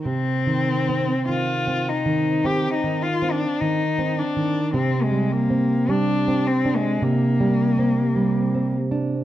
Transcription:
X:1
M:4/4
L:1/16
Q:1/4=52
K:Cm
V:1 name="Cello"
C4 F2 E2 G E F D E2 D2 | C A, B,2 D2 C A, B,6 z2 |]
V:2 name="Nylon-string guitar" clef=bass
(3C,2 E,2 C2 (3E,2 C2 E,2 (3C2 E,2 C2 (3E,2 C2 E,2 | (3C,2 G,2 C2 (3G,2 C2 D2 (3C,2 G,2 C2 (3G,2 C2 D2 |]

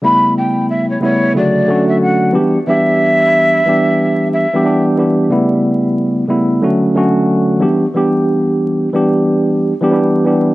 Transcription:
X:1
M:4/4
L:1/16
Q:"Swing 16ths" 1/4=91
K:Edor
V:1 name="Flute"
b2 g2 e c c2 d3 e f2 z2 | e8- e2 e3 z3 | z16 | z16 |]
V:2 name="Tine electric piano"
[C,G,A,B,E]6 [C,G,A,B,E]2 [C,D,F,A,F]2 [D,F,A,CF]4 [E,G,B,DG] z | [E,G,B,DG]6 [E,G,B,DG]4- [E,G,B,DG] [E,G,B,DG] [E,G,B,DG]2 [E,G,B,DG]2 | [C,G,A,B,E]6 [C,G,A,B,E]2 [D,F,A,CF]2 [D,F,A,CF]4 [E,G,B,DG] z | [E,G,B,DG]6 [E,G,B,DG]4- [E,G,B,DG] [E,G,B,DG] [E,G,B,DG]2 [E,G,B,DG]2 |]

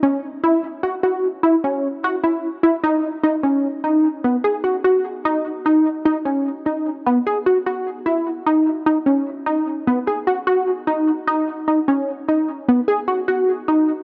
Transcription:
X:1
M:7/4
L:1/8
Q:1/4=149
K:G#m
V:1 name="Synth arpeggio sound"
C2 E2 F F2 E C2 F E2 E | D2 D C2 D2 B, G F F2 D2 | D2 D C2 D2 B, G F F2 E2 | D2 D C2 D2 B, G F F2 D2 |
D2 D C2 D2 B, G F F2 D2 |]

